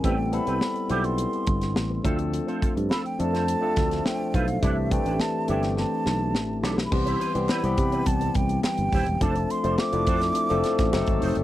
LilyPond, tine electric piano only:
\new Staff \with { instrumentName = "Tine electric piano" } { \time 4/4 \key c \major \tempo 4 = 105 <g b c' e' a'>8 <g b c' e' a'>4 <g b c' e' a'>4.~ <g b c' e' a'>16 r16 <f a c' d' a'>8~ | <f a c' d' a'>4~ <f a c' d' a'>16 r16 <f a c' d' a'>8. <f a c' d' a'>4. r16 | <e a c' d' g'>8 <e a c' d' e'>4 <e a c' d' g'>4.~ <e a c' d' g'>16 r8. | <e g b c' g'>8. <e g b c' g'>8 <e g b c' g'>4.~ <e g b c' g'>16 r4 |
<f a c' d' a'>8. <f a c' d' c''>8 <f a c' d' e'>4 <f a c' d' a'>8. <fis a c' dis' a'>4 | }